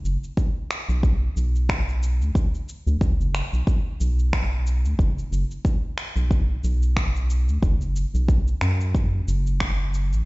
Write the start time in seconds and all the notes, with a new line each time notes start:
0.04 F#1, shaker
0.24 shaker
0.37 kick, shaker
0.71 finger snap, shaker
0.89 B1, shaker
1.03 kick, shaker
1.36 B1, shaker
1.56 shaker
1.69 finger snap, kick, shaker
1.89 shaker
2.03 shaker
2.21 D2, shaker
2.35 kick, shaker
2.55 shaker
2.69 shaker
2.87 D2, shaker
3.01 kick, shaker
3.19 F#1, shaker
3.35 finger snap, shaker
3.52 B1, shaker
3.67 kick, shaker
4.00 B1, shaker
4.19 shaker
4.33 finger snap, kick, shaker
4.67 shaker
4.84 D2, shaker
4.99 F#1, kick, shaker
5.19 shaker
5.31 F#1, shaker
5.51 shaker
5.65 kick, shaker
5.98 finger snap, shaker
6.16 B1, shaker
6.31 kick, shaker
6.64 B1, shaker
6.83 shaker
6.97 finger snap, kick, shaker
7.16 shaker
7.30 shaker
7.48 D2, shaker
7.62 F#1, kick, shaker
7.81 shaker
7.96 shaker
8.14 B1, shaker
8.28 kick, shaker
8.48 shaker
8.61 F#2, finger snap, shaker
8.81 shaker
8.95 kick, shaker
9.27 F#1, shaker
9.47 shaker
9.60 finger snap, kick, shaker
9.94 shaker
10.12 A1, shaker